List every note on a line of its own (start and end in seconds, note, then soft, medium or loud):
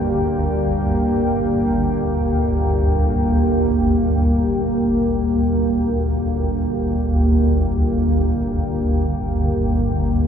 0.00 3.54 G1 medium
0.00 3.54 D2 medium
0.00 3.58 G3 medium
0.00 10.27 A#3 medium
0.00 3.58 G4 medium
0.00 10.27 G4 medium
0.00 10.27 D5 medium
0.00 10.27 G5 medium
3.55 10.27 G1 medium
3.55 10.27 D2 medium